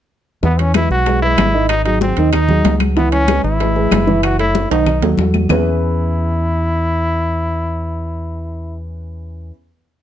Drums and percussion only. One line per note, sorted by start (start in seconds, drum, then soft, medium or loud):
0.43 high bongo medium
0.43 high conga soft
0.59 high bongo soft
0.59 high conga soft
0.59 high timbale medium
0.74 high bongo medium
0.74 high conga medium
0.74 high timbale medium
0.74 low timbale medium
0.74 claves medium
0.91 high bongo soft
0.91 high conga soft
1.06 high bongo medium
1.06 high conga soft
1.06 high timbale medium
1.23 high bongo soft
1.23 high conga soft
1.38 high bongo medium
1.38 low bongo medium
1.38 high conga medium
1.38 high timbale medium
1.38 low timbale medium
1.38 claves medium
1.69 high bongo medium
1.69 high conga soft
1.69 high timbale medium
1.69 claves medium
1.85 high conga soft
1.85 high timbale medium
2.01 high bongo medium
2.01 high conga medium
2.01 low timbale medium
2.17 high bongo soft
2.17 high conga soft
2.17 high timbale medium
2.33 high bongo medium
2.33 high conga soft
2.33 low conga medium
2.33 high timbale medium
2.33 claves medium
2.49 high bongo soft
2.49 high conga soft
2.49 low conga medium
2.65 high bongo medium
2.65 low bongo medium
2.65 high conga medium
2.65 high timbale medium
2.65 low timbale medium
2.80 high bongo soft
2.80 high conga medium
2.80 high timbale medium
2.80 claves medium
2.97 high bongo medium
2.97 high conga soft
3.12 high bongo soft
3.12 high conga soft
3.12 high timbale medium
3.28 high bongo medium
3.28 high conga medium
3.28 high timbale medium
3.28 low timbale medium
3.28 claves medium
3.44 high bongo soft
3.44 high conga soft
3.60 high bongo medium
3.60 high conga soft
3.60 high timbale medium
3.76 high bongo soft
3.76 high conga soft
3.91 high bongo medium
3.91 low bongo medium
3.91 high conga medium
3.91 high timbale medium
3.91 low timbale medium
3.91 claves medium
4.07 high conga medium
4.23 high bongo medium
4.23 high conga soft
4.23 high timbale medium
4.23 claves medium
4.39 high conga soft
4.39 high timbale medium
4.55 high bongo medium
4.55 high conga medium
4.55 high timbale medium
4.71 high bongo soft
4.71 high conga soft
4.71 high timbale loud
4.87 high bongo medium
4.87 high conga soft
4.87 low conga medium
4.87 claves medium
5.02 high bongo soft
5.02 high conga soft
5.02 low timbale medium
5.18 high bongo medium
5.18 low bongo medium
5.18 high conga medium
5.34 high bongo soft
5.34 high conga medium
5.34 low timbale medium
5.34 claves medium
5.49 low bongo medium
5.49 low conga loud
5.49 low timbale medium
5.49 claves loud